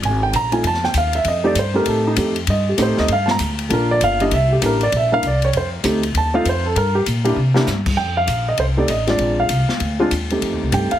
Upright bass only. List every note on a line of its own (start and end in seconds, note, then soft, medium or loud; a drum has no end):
0.02 0.32 G#1 medium
0.33 0.63 A#1 medium
0.63 0.93 F2 medium
0.94 1.24 D#2 medium
1.24 1.54 F2 loud
1.55 1.85 G2 medium
1.85 2.16 A2 medium
2.17 2.47 F2 medium
2.47 2.77 G2 medium
2.78 2.89 A2 medium
2.88 2.98 F2 medium
2.98 3.08 D#2 medium
3.08 3.38 G2 medium
3.39 3.69 D2 medium
3.70 4.00 A#1 medium
4.01 4.30 G1 medium
4.31 4.61 C2 medium
4.62 4.91 A1 medium
4.92 5.22 A#1 medium
5.22 5.52 C2 medium
5.53 5.83 F2 medium
5.84 6.13 D2 medium
6.14 6.44 D#2 medium
6.45 6.74 F2 medium
6.76 7.05 G2 loud
7.06 7.36 A#2 loud
7.36 7.66 C3 medium
7.67 7.96 G2 medium
7.97 8.27 F2 medium
8.27 8.57 A#1 medium
8.58 8.88 C2 medium
8.88 9.18 A1 medium
9.19 9.48 A#1 medium
9.49 9.68 C2 medium
9.69 muted upright bass stroke soft
9.80 10.10 D2 medium
10.11 10.41 D#2 medium
10.42 10.52 F2 medium
10.52 10.62 D#2 medium
10.63 10.71 C2 medium
10.72 10.90 G2 medium
10.92 muted upright bass stroke soft